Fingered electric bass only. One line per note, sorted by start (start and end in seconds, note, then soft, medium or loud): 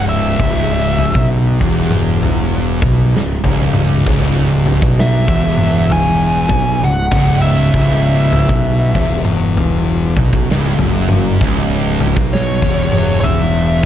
0.00 0.36 C#1 medium
0.40 1.11 C#1 loud
1.15 1.58 B1 loud
1.61 2.79 E1 medium
2.82 3.13 B1 medium
3.15 3.43 C#1 medium
3.44 4.03 C#1 loud
4.07 4.78 C#1 medium
4.82 5.25 B1 medium
5.28 6.46 E1 medium
6.49 6.80 B1 medium
6.83 7.10 C#1 medium
7.12 7.70 C#1 loud
7.74 8.46 C#1 loud
8.49 8.92 B1 medium
8.95 10.13 E1 medium
10.17 10.32 B1 medium
10.33 10.48 B1 medium
10.51 10.78 C#1 medium
10.79 11.37 F#1 medium
11.41 12.13 C#1 medium
12.16 12.59 B1 medium
12.62 13.80 E1 medium